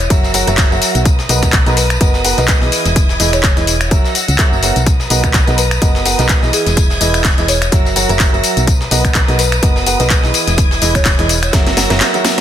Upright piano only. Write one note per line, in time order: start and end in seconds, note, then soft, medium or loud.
0.10 0.31 F#3 loud
0.10 0.31 F#4 loud
0.10 0.31 A#4 loud
0.10 0.31 C#5 medium
0.10 0.31 E5 loud
0.34 0.45 F#3 medium
0.34 0.45 F#4 medium
0.34 0.45 A#4 medium
0.34 0.45 C#5 medium
0.34 0.45 F#5 loud
0.47 0.67 F#3 loud
0.47 0.67 F#4 medium
0.47 0.67 A#4 medium
0.47 0.67 C#5 medium
0.47 0.67 E5 loud
0.71 1.04 F#3 medium
0.71 1.04 F#4 medium
0.71 1.04 A#4 medium
0.71 1.04 C#5 medium
0.71 1.04 E5 medium
1.29 1.54 B3 medium
1.29 1.54 F#4 medium
1.29 1.54 A#4 medium
1.29 1.54 B4 medium
1.29 1.54 D#5 loud
1.66 1.81 B3 medium
1.66 1.81 F#4 medium
1.66 1.81 A#4 medium
1.66 1.81 B4 medium
1.66 1.81 D#5 medium
2.01 2.21 B3 loud
2.01 2.21 F#4 medium
2.01 2.21 A#4 loud
2.01 2.21 B4 medium
2.01 2.21 D#5 loud
2.25 2.36 B3 medium
2.25 2.36 F#4 medium
2.25 2.36 A#4 medium
2.25 2.36 B4 medium
2.25 2.36 F#5 loud
2.38 2.58 B3 loud
2.38 2.58 F#4 medium
2.38 2.58 A#4 medium
2.38 2.58 B4 medium
2.38 2.58 D#5 loud
2.62 3.17 E3 medium
2.62 3.17 E4 medium
2.62 3.17 G#4 medium
2.62 3.17 B4 medium
2.62 3.17 D#5 medium
3.20 3.44 E3 medium
3.20 3.44 E4 medium
3.20 3.44 G#4 medium
3.20 3.44 B4 medium
3.20 3.44 D#5 loud
3.57 3.71 E3 medium
3.57 3.71 E4 medium
3.57 3.71 G#4 medium
3.57 3.71 B4 medium
3.57 3.71 D#5 medium
3.91 4.12 F#3 loud
3.91 4.12 F#4 medium
3.91 4.12 A#4 medium
3.91 4.12 C#5 medium
3.91 4.12 E5 loud
4.39 4.60 F#3 loud
4.39 4.60 F#4 medium
4.39 4.60 A#4 medium
4.39 4.60 C#5 medium
4.39 4.60 E5 loud
4.63 4.79 B3 medium
4.63 4.79 F#4 medium
4.63 4.79 A#4 medium
4.63 4.79 C#5 medium
4.63 4.79 E5 medium
5.10 5.35 B3 medium
5.10 5.35 F#4 medium
5.10 5.35 A#4 medium
5.10 5.35 B4 medium
5.10 5.35 D#5 loud
5.47 5.62 B3 medium
5.47 5.62 F#4 medium
5.47 5.62 A#4 medium
5.47 5.62 B4 medium
5.47 5.62 D#5 medium
5.82 6.02 B3 loud
5.82 6.02 F#4 medium
5.82 6.02 A#4 medium
5.82 6.02 B4 medium
5.82 6.02 D#5 loud
6.06 6.17 B3 medium
6.06 6.17 F#4 medium
6.06 6.17 A#4 medium
6.06 6.17 B4 medium
6.06 6.17 F#5 loud
6.19 6.39 B3 loud
6.19 6.39 F#4 medium
6.19 6.39 A#4 medium
6.19 6.39 B4 medium
6.19 6.39 D#5 loud
6.43 6.98 E3 medium
6.43 6.98 E4 medium
6.43 6.98 G#4 medium
6.43 6.98 B4 medium
6.43 6.98 D#5 medium
7.01 7.25 E3 medium
7.01 7.25 E4 medium
7.01 7.25 G#4 medium
7.01 7.25 B4 medium
7.01 7.25 D#5 loud
7.38 7.52 E3 medium
7.38 7.52 E4 medium
7.38 7.52 G#4 medium
7.38 7.52 B4 medium
7.38 7.52 D#5 medium
7.72 7.93 F#3 loud
7.72 7.93 F#4 medium
7.72 7.93 A#4 medium
7.72 7.93 C#5 medium
7.72 7.93 E5 loud
7.96 8.07 F#3 medium
7.96 8.07 F#4 medium
7.96 8.07 A#4 medium
7.96 8.07 C#5 medium
7.96 8.07 F#5 loud
8.09 8.29 F#3 loud
8.09 8.29 F#4 medium
8.09 8.29 A#4 medium
8.09 8.29 C#5 medium
8.09 8.29 E5 loud
8.33 8.66 F#3 medium
8.33 8.66 F#4 medium
8.33 8.66 A#4 medium
8.33 8.66 C#5 medium
8.33 8.66 E5 medium
8.91 9.16 B3 medium
8.91 9.16 F#4 medium
8.91 9.16 A#4 medium
8.91 9.16 B4 medium
8.91 9.16 D#5 loud
9.28 9.43 B3 medium
9.28 9.43 F#4 medium
9.28 9.43 A#4 medium
9.28 9.43 B4 medium
9.28 9.43 D#5 medium
9.63 9.83 B3 loud
9.63 9.83 F#4 medium
9.63 9.83 A#4 loud
9.63 9.83 B4 medium
9.63 9.83 D#5 loud
9.86 9.98 B3 medium
9.86 9.98 F#4 medium
9.86 9.98 A#4 medium
9.86 9.98 B4 medium
9.86 9.98 F#5 loud
10.00 10.20 B3 loud
10.00 10.20 F#4 medium
10.00 10.20 A#4 medium
10.00 10.20 B4 medium
10.00 10.20 D#5 loud
10.24 10.79 E3 medium
10.24 10.79 E4 medium
10.24 10.79 G#4 medium
10.24 10.79 B4 medium
10.24 10.79 D#5 medium
10.82 11.06 E3 medium
10.82 11.06 E4 medium
10.82 11.06 G#4 medium
10.82 11.06 B4 medium
10.82 11.06 D#5 loud
11.19 11.33 E3 medium
11.19 11.33 E4 medium
11.19 11.33 G#4 medium
11.19 11.33 B4 medium
11.19 11.33 D#5 medium
11.53 11.74 F#3 loud
11.53 11.74 F#4 medium
11.53 11.74 A#4 medium
11.53 11.74 C#5 medium
11.53 11.74 E5 loud
11.77 11.88 F#3 medium
11.77 11.88 F#4 medium
11.77 11.88 A#4 medium
11.77 11.88 C#5 medium
11.77 11.88 F#5 loud
11.90 12.10 F#3 loud
11.90 12.10 F#4 medium
11.90 12.10 A#4 medium
11.90 12.10 C#5 medium
11.90 12.10 E5 loud
12.14 12.41 F#3 medium
12.14 12.41 F#4 medium
12.14 12.41 A#4 medium
12.14 12.41 C#5 medium
12.14 12.41 E5 loud